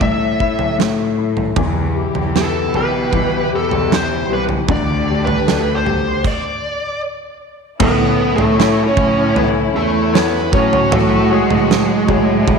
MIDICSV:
0, 0, Header, 1, 6, 480
1, 0, Start_track
1, 0, Tempo, 779221
1, 968, Time_signature, 4, 2, 24, 8
1, 7754, End_track
2, 0, Start_track
2, 0, Title_t, "Lead electric guitar"
2, 0, Program_c, 0, 29
2, 11, Note_on_c, 0, 76, 76
2, 465, Note_off_c, 0, 76, 0
2, 1461, Note_on_c, 0, 69, 78
2, 1700, Note_off_c, 0, 69, 0
2, 1703, Note_on_c, 0, 71, 76
2, 2151, Note_off_c, 0, 71, 0
2, 2191, Note_on_c, 0, 69, 73
2, 2424, Note_off_c, 0, 69, 0
2, 2426, Note_on_c, 0, 72, 84
2, 2664, Note_off_c, 0, 72, 0
2, 2669, Note_on_c, 0, 71, 91
2, 2731, Note_off_c, 0, 71, 0
2, 2904, Note_on_c, 0, 74, 101
2, 3226, Note_off_c, 0, 74, 0
2, 3233, Note_on_c, 0, 71, 70
2, 3545, Note_off_c, 0, 71, 0
2, 3548, Note_on_c, 0, 72, 91
2, 3836, Note_off_c, 0, 72, 0
2, 3865, Note_on_c, 0, 74, 83
2, 4312, Note_off_c, 0, 74, 0
2, 4818, Note_on_c, 0, 59, 79
2, 4821, Note_on_c, 0, 71, 85
2, 5112, Note_off_c, 0, 59, 0
2, 5143, Note_off_c, 0, 71, 0
2, 5145, Note_on_c, 0, 57, 62
2, 5149, Note_on_c, 0, 69, 81
2, 5435, Note_off_c, 0, 57, 0
2, 5437, Note_off_c, 0, 69, 0
2, 5463, Note_on_c, 0, 61, 82
2, 5466, Note_on_c, 0, 73, 89
2, 5754, Note_off_c, 0, 61, 0
2, 5767, Note_off_c, 0, 73, 0
2, 5769, Note_on_c, 0, 71, 104
2, 5774, Note_on_c, 0, 59, 69
2, 5835, Note_off_c, 0, 71, 0
2, 5836, Note_off_c, 0, 59, 0
2, 6012, Note_on_c, 0, 57, 64
2, 6014, Note_on_c, 0, 69, 86
2, 6234, Note_off_c, 0, 57, 0
2, 6248, Note_on_c, 0, 71, 88
2, 6254, Note_on_c, 0, 59, 62
2, 6257, Note_off_c, 0, 69, 0
2, 6472, Note_off_c, 0, 71, 0
2, 6473, Note_off_c, 0, 59, 0
2, 6491, Note_on_c, 0, 73, 95
2, 6494, Note_on_c, 0, 61, 80
2, 6715, Note_off_c, 0, 61, 0
2, 6728, Note_on_c, 0, 57, 69
2, 6731, Note_on_c, 0, 69, 93
2, 6737, Note_off_c, 0, 73, 0
2, 6951, Note_off_c, 0, 57, 0
2, 6975, Note_off_c, 0, 69, 0
2, 6977, Note_on_c, 0, 56, 56
2, 6980, Note_on_c, 0, 68, 63
2, 7754, Note_off_c, 0, 56, 0
2, 7754, Note_off_c, 0, 68, 0
2, 7754, End_track
3, 0, Start_track
3, 0, Title_t, "Upright piano"
3, 0, Program_c, 1, 0
3, 0, Control_c, 1, 64, 127
3, 0, Note_on_c, 1, 57, 53
3, 0, Note_on_c, 1, 64, 50
3, 8, Note_off_c, 1, 57, 0
3, 8, Note_on_c, 1, 57, 48
3, 243, Note_off_c, 1, 64, 0
3, 252, Note_on_c, 1, 64, 49
3, 475, Note_off_c, 1, 57, 0
3, 484, Note_on_c, 1, 57, 56
3, 719, Note_off_c, 1, 64, 0
3, 729, Note_on_c, 1, 64, 47
3, 951, Note_off_c, 1, 57, 0
3, 961, Note_off_c, 1, 64, 0
3, 968, Note_on_c, 1, 52, 68
3, 975, Control_c, 1, 64, 0
3, 1082, Control_c, 1, 64, 127
3, 1204, Note_on_c, 1, 67, 50
3, 1450, Note_on_c, 1, 59, 56
3, 1681, Note_off_c, 1, 67, 0
3, 1690, Note_on_c, 1, 67, 51
3, 1923, Note_off_c, 1, 52, 0
3, 1932, Note_on_c, 1, 52, 55
3, 2162, Note_off_c, 1, 67, 0
3, 2171, Note_on_c, 1, 67, 49
3, 2384, Note_off_c, 1, 59, 0
3, 2404, Note_off_c, 1, 52, 0
3, 2413, Note_on_c, 1, 52, 56
3, 2642, Note_off_c, 1, 67, 0
3, 2651, Note_on_c, 1, 67, 52
3, 2876, Note_off_c, 1, 52, 0
3, 2883, Note_off_c, 1, 67, 0
3, 2890, Note_on_c, 1, 50, 77
3, 2895, Control_c, 1, 64, 0
3, 3024, Control_c, 1, 64, 127
3, 3133, Note_on_c, 1, 67, 48
3, 3370, Note_on_c, 1, 69, 53
3, 3595, Note_off_c, 1, 67, 0
3, 3605, Note_on_c, 1, 67, 54
3, 3825, Note_off_c, 1, 50, 0
3, 3835, Note_off_c, 1, 69, 0
3, 3839, Note_off_c, 1, 67, 0
3, 3855, Control_c, 1, 64, 0
3, 4802, Note_on_c, 1, 57, 75
3, 4934, Control_c, 1, 64, 127
3, 5285, Note_on_c, 1, 64, 51
3, 5287, Note_on_c, 1, 69, 46
3, 5289, Note_on_c, 1, 73, 61
3, 5752, Note_off_c, 1, 64, 0
3, 5753, Note_off_c, 1, 69, 0
3, 5754, Note_off_c, 1, 73, 0
3, 5773, Note_on_c, 1, 64, 51
3, 5773, Note_on_c, 1, 69, 47
3, 5775, Note_on_c, 1, 73, 60
3, 6229, Note_off_c, 1, 64, 0
3, 6232, Note_off_c, 1, 69, 0
3, 6235, Note_off_c, 1, 73, 0
3, 6238, Note_on_c, 1, 64, 48
3, 6241, Note_on_c, 1, 69, 49
3, 6244, Note_on_c, 1, 73, 60
3, 6460, Note_off_c, 1, 57, 0
3, 6476, Note_off_c, 1, 64, 0
3, 6477, Note_off_c, 1, 69, 0
3, 6478, Note_on_c, 1, 54, 71
3, 6479, Note_off_c, 1, 73, 0
3, 6497, Control_c, 1, 64, 0
3, 6589, Control_c, 1, 64, 127
3, 6963, Note_on_c, 1, 66, 53
3, 6964, Note_on_c, 1, 68, 48
3, 6965, Note_on_c, 1, 73, 56
3, 7431, Note_off_c, 1, 66, 0
3, 7431, Note_off_c, 1, 68, 0
3, 7432, Note_off_c, 1, 73, 0
3, 7440, Note_on_c, 1, 66, 53
3, 7445, Note_on_c, 1, 68, 52
3, 7451, Note_on_c, 1, 73, 58
3, 7754, Note_off_c, 1, 54, 0
3, 7754, Note_off_c, 1, 66, 0
3, 7754, Note_off_c, 1, 68, 0
3, 7754, Note_off_c, 1, 73, 0
3, 7754, End_track
4, 0, Start_track
4, 0, Title_t, "String section"
4, 0, Program_c, 2, 48
4, 963, Note_on_c, 2, 64, 61
4, 967, Note_on_c, 2, 47, 67
4, 967, Note_on_c, 2, 67, 76
4, 2866, Note_off_c, 2, 64, 0
4, 2868, Note_off_c, 2, 47, 0
4, 2868, Note_off_c, 2, 67, 0
4, 2878, Note_on_c, 2, 62, 68
4, 2880, Note_on_c, 2, 57, 65
4, 2881, Note_on_c, 2, 67, 76
4, 3833, Note_off_c, 2, 62, 0
4, 3835, Note_off_c, 2, 57, 0
4, 3835, Note_off_c, 2, 67, 0
4, 4808, Note_on_c, 2, 64, 84
4, 4813, Note_on_c, 2, 61, 72
4, 6471, Note_off_c, 2, 64, 0
4, 6474, Note_off_c, 2, 61, 0
4, 6484, Note_on_c, 2, 66, 85
4, 6487, Note_on_c, 2, 54, 76
4, 7436, Note_off_c, 2, 66, 0
4, 7447, Note_on_c, 2, 64, 86
4, 7754, Note_off_c, 2, 54, 0
4, 7754, Note_off_c, 2, 64, 0
4, 7754, End_track
5, 0, Start_track
5, 0, Title_t, "Cello section"
5, 0, Program_c, 3, 48
5, 0, Note_on_c, 3, 45, 86
5, 943, Note_off_c, 3, 45, 0
5, 965, Note_on_c, 3, 40, 87
5, 1302, Note_off_c, 3, 40, 0
5, 1326, Note_on_c, 3, 40, 79
5, 1662, Note_off_c, 3, 40, 0
5, 1683, Note_on_c, 3, 47, 74
5, 2141, Note_off_c, 3, 47, 0
5, 2161, Note_on_c, 3, 40, 92
5, 2620, Note_off_c, 3, 40, 0
5, 2642, Note_on_c, 3, 36, 84
5, 2868, Note_off_c, 3, 36, 0
5, 2887, Note_on_c, 3, 38, 99
5, 3343, Note_off_c, 3, 38, 0
5, 3362, Note_on_c, 3, 38, 96
5, 3820, Note_off_c, 3, 38, 0
5, 4808, Note_on_c, 3, 45, 107
5, 5143, Note_off_c, 3, 45, 0
5, 5166, Note_on_c, 3, 45, 95
5, 5502, Note_off_c, 3, 45, 0
5, 5527, Note_on_c, 3, 45, 103
5, 5983, Note_off_c, 3, 45, 0
5, 6001, Note_on_c, 3, 40, 94
5, 6460, Note_off_c, 3, 40, 0
5, 6486, Note_on_c, 3, 45, 100
5, 6710, Note_off_c, 3, 45, 0
5, 6721, Note_on_c, 3, 45, 113
5, 7060, Note_off_c, 3, 45, 0
5, 7080, Note_on_c, 3, 45, 89
5, 7419, Note_off_c, 3, 45, 0
5, 7443, Note_on_c, 3, 45, 96
5, 7754, Note_off_c, 3, 45, 0
5, 7754, End_track
6, 0, Start_track
6, 0, Title_t, "Drums"
6, 5, Note_on_c, 9, 36, 72
6, 6, Note_on_c, 9, 43, 58
6, 67, Note_off_c, 9, 36, 0
6, 68, Note_off_c, 9, 43, 0
6, 248, Note_on_c, 9, 36, 62
6, 310, Note_off_c, 9, 36, 0
6, 362, Note_on_c, 9, 43, 53
6, 424, Note_off_c, 9, 43, 0
6, 492, Note_on_c, 9, 38, 92
6, 554, Note_off_c, 9, 38, 0
6, 843, Note_on_c, 9, 43, 53
6, 904, Note_off_c, 9, 43, 0
6, 963, Note_on_c, 9, 43, 86
6, 965, Note_on_c, 9, 36, 91
6, 1024, Note_off_c, 9, 43, 0
6, 1026, Note_off_c, 9, 36, 0
6, 1324, Note_on_c, 9, 43, 57
6, 1386, Note_off_c, 9, 43, 0
6, 1452, Note_on_c, 9, 38, 88
6, 1513, Note_off_c, 9, 38, 0
6, 1689, Note_on_c, 9, 43, 51
6, 1750, Note_off_c, 9, 43, 0
6, 1926, Note_on_c, 9, 36, 67
6, 1928, Note_on_c, 9, 43, 62
6, 1988, Note_off_c, 9, 36, 0
6, 1990, Note_off_c, 9, 43, 0
6, 2287, Note_on_c, 9, 43, 57
6, 2349, Note_off_c, 9, 43, 0
6, 2417, Note_on_c, 9, 38, 99
6, 2478, Note_off_c, 9, 38, 0
6, 2764, Note_on_c, 9, 43, 53
6, 2826, Note_off_c, 9, 43, 0
6, 2886, Note_on_c, 9, 36, 92
6, 2886, Note_on_c, 9, 43, 89
6, 2947, Note_off_c, 9, 43, 0
6, 2948, Note_off_c, 9, 36, 0
6, 3248, Note_on_c, 9, 43, 58
6, 3310, Note_off_c, 9, 43, 0
6, 3376, Note_on_c, 9, 38, 91
6, 3438, Note_off_c, 9, 38, 0
6, 3612, Note_on_c, 9, 43, 53
6, 3674, Note_off_c, 9, 43, 0
6, 3846, Note_on_c, 9, 49, 70
6, 3847, Note_on_c, 9, 36, 87
6, 3908, Note_off_c, 9, 36, 0
6, 3908, Note_off_c, 9, 49, 0
6, 4805, Note_on_c, 9, 43, 112
6, 4805, Note_on_c, 9, 49, 91
6, 4807, Note_on_c, 9, 36, 115
6, 4867, Note_off_c, 9, 43, 0
6, 4867, Note_off_c, 9, 49, 0
6, 4869, Note_off_c, 9, 36, 0
6, 5164, Note_on_c, 9, 43, 68
6, 5226, Note_off_c, 9, 43, 0
6, 5296, Note_on_c, 9, 38, 91
6, 5358, Note_off_c, 9, 38, 0
6, 5525, Note_on_c, 9, 43, 60
6, 5526, Note_on_c, 9, 36, 92
6, 5586, Note_off_c, 9, 43, 0
6, 5588, Note_off_c, 9, 36, 0
6, 5767, Note_on_c, 9, 43, 72
6, 5829, Note_off_c, 9, 43, 0
6, 6254, Note_on_c, 9, 38, 115
6, 6316, Note_off_c, 9, 38, 0
6, 6486, Note_on_c, 9, 36, 109
6, 6548, Note_off_c, 9, 36, 0
6, 6609, Note_on_c, 9, 43, 62
6, 6671, Note_off_c, 9, 43, 0
6, 6727, Note_on_c, 9, 43, 108
6, 6789, Note_off_c, 9, 43, 0
6, 7087, Note_on_c, 9, 43, 64
6, 7148, Note_off_c, 9, 43, 0
6, 7213, Note_on_c, 9, 38, 98
6, 7275, Note_off_c, 9, 38, 0
6, 7444, Note_on_c, 9, 43, 65
6, 7445, Note_on_c, 9, 36, 77
6, 7505, Note_off_c, 9, 43, 0
6, 7506, Note_off_c, 9, 36, 0
6, 7685, Note_on_c, 9, 36, 82
6, 7688, Note_on_c, 9, 43, 70
6, 7747, Note_off_c, 9, 36, 0
6, 7750, Note_off_c, 9, 43, 0
6, 7754, End_track
0, 0, End_of_file